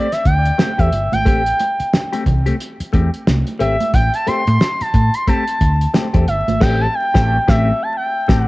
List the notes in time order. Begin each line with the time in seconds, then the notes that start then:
Already playing: D5
0.12 E5, snare, closed hi-hat
0.25 D2 G5, kick, closed hi-hat
0.46 closed hi-hat
0.58 A3 C4 G4, snare, high conga
0.78 E2 A3 C4 G4 E5, kick, closed hi-hat
0.93 G1, closed hi-hat
1.12 G#1 G5, closed hi-hat, high conga
1.25 A1 A3 C4 G4 G5, kick, closed hi-hat, muted conga
1.46 closed hi-hat
1.59 closed hi-hat, muted conga
1.80 muted fingered electric bass stroke, closed hi-hat
1.93 snare, high conga
2.13 A3 C4 G4, closed hi-hat
2.26 C2, kick, closed hi-hat, low conga
2.46 A3 C4 G4, closed hi-hat
2.60 closed hi-hat
2.80 muted fingered electric bass stroke, closed hi-hat
2.93 E2 A3 C4 G4, kick, closed hi-hat, muted conga
3.14 closed hi-hat
3.27 C2, snare, high conga
3.47 closed hi-hat
3.59 G#1 A3 C4 G4 E5, closed hi-hat
3.80 closed hi-hat, high conga
3.94 A1 G5, kick, closed hi-hat, muted conga
4.14 A5, closed hi-hat
4.27 A3 C4 G4 C6, muted fingered electric bass stroke, closed hi-hat, muted conga
4.47 A2, closed hi-hat
4.61 snare, high conga
4.81 A5, muted fingered electric bass stroke, closed hi-hat
4.94 A2, kick, closed hi-hat
5.14 C6, closed hi-hat
5.27 A3 C4 G4 A5, kick, closed hi-hat
5.48 closed hi-hat
5.61 D2, kick, closed hi-hat, muted conga
5.81 closed hi-hat
5.94 A3 C4 G4, snare, high conga
6.13 E2 A3 C4 G4, kick, closed hi-hat
6.27 G1 E5, closed hi-hat
6.48 G#1, closed hi-hat, high conga
6.60 A1 A3 C4 G4 G5, kick, snare, crash
6.81 A5
6.95 G5
7.14 A1 A3 C4 G4, kick, snare
7.48 A1 A3 C4 G4 E5, kick, snare
7.83 A5
7.97 G5
8.28 A1 A3 C4 G4, kick, snare
8.41 F#5